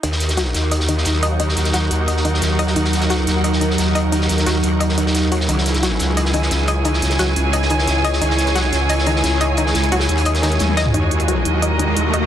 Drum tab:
HH |x-xxx-x-x-x-x-x-|x-xxx-x-x-x-x-x-|x-xxx-x-x-x-x-x-|x-xxx-x-x-x-x-x-|
SD |-oooo-o--o-oo---|-oooo----o-oo--o|-oooo-o--o-oo---|-oooo----o-oo--o|
T1 |----------------|----------------|----------------|----------------|
T2 |----------------|----------------|----------------|----------------|

HH |x-xxx-x-x-x-x-x-|x-xxx-x-x-x-x-x-|x-xxx-x-x-x-x-x-|x-xxxxxxxxxxx-x-|
SD |-oooo-o--o-oo---|-oooo----o-oo--o|-oooo-o--o-oo---|-oo--o---oo-o-o-|
T1 |----------------|----------------|----------------|------------oo--|
T2 |----------------|----------------|----------------|---------------o|

HH |x-xxx-x-x-x-x-x-|
SD |----------------|
T1 |----------------|
T2 |----------------|